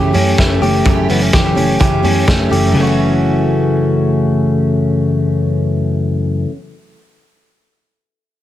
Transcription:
Already playing: F#2 C#3 E3 A3 C#4 G4
0.13 F#2 E3 A3 C#4 G4, open hi-hat
0.38 F#1 E3 A3 C#4 G4, kick, snare, closed hi-hat
0.61 F#1 E3 A3 C#4 G4, open hi-hat
0.85 F#1 F#2 C#3 E3 A3 C#4 G4, kick, closed hi-hat
1.09 F#1 E3 A3 B3 C#4 G4, open hi-hat
1.22 C#4
1.33 F#1 E3 A3 C#4 G4, kick, snare, closed hi-hat
1.55 F#1 E3 A3 C#4 G4, open hi-hat
1.79 F#1 F#2 C#3 E3 A3 C#4 G4, kick, closed hi-hat
2.03 F#2 E3 A3 C#4 G4, open hi-hat
2.26 F#1 E3 A3 C#4 G4, kick, snare, closed hi-hat
2.49 F#1 E3 A3 C#4 G4, open hi-hat
2.66 F#2
2.72 F#1 F#2 C#3 E3
2.80 A3 C#4 F#4
2.87 F#4

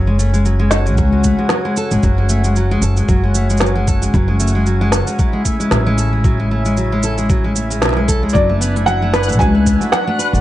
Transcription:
Already playing: F#1 C#3 G#5
0.07 G#3
0.19 A3, shaker
0.34 G#3, shaker
0.45 F#3, shaker
0.59 G#3
0.70 F#4 A4, snare, shaker
0.86 G#3, shaker
0.97 C#2 F#3, kick, shaker
1.12 G#3
1.24 A3, kick, shaker
1.39 G#3
1.49 F#3, snare, shaker
1.65 G#3
1.77 A4, shaker
1.91 G#1 G#3, shaker
2.03 F#1 F#3, kick, shaker
2.18 G#3
2.29 A3, shaker
2.44 G#3, shaker
2.56 F#3, shaker
2.71 G#3
2.81 F#1 A4, shaker
2.97 G#3, shaker
3.08 F#1 F#3, kick, shaker
3.23 G#3
3.35 A3, shaker
3.50 G#3, shaker
3.57 F#3, snare, shaker
3.66 shaker
3.75 G#3
3.87 A4, kick, shaker
4.02 G#3, shaker
4.14 F#1 F#3, kick, shaker
4.28 G#3
4.40 A3, shaker
4.47 shaker
4.55 G#3
4.66 F#3, shaker
4.81 G#3
4.92 A4, snare, shaker
5.07 G#3, shaker
5.19 F#3, kick, shaker
5.26 E4
5.33 G#3
5.45 A3, kick, shaker
5.60 G#3, shaker
5.71 A1 F#3, snare, shaker
5.86 G#3
5.98 A4, shaker
6.13 G#3
6.24 F#3, kick, shaker
6.40 G#3
6.51 A3
6.65 G#3, shaker
6.77 F#3, shaker
6.92 G#3
7.03 A4, shaker
7.18 G#3, shaker
7.30 F#3, kick, shaker
7.44 G#3
7.55 A3, shaker
7.70 G#3, shaker
7.82 B1 F#3, snare, shaker
7.85 snare
7.89 snare
7.93 G#3, snare
8.08 A4, kick, shaker
8.23 C#2 G#3
8.29 D5, shaker
8.34 F#1 F#3 D4 F#6, kick, shaker
8.49 A3
8.61 B3, shaker
8.76 A3, shaker
8.86 F#3 F#5, shaker
9.02 A3
9.14 B4, snare, shaker
9.23 shaker
9.28 A3, shaker
9.32 shaker
9.39 C#2 F#3 G#5, kick, shaker
9.55 A3
9.66 B3, kick, shaker
9.80 A3 F#4, shaker
9.92 F#3 F#5, snare, shaker
10.07 A3
10.19 B4, shaker
10.25 B4
10.33 G#1 A3, shaker

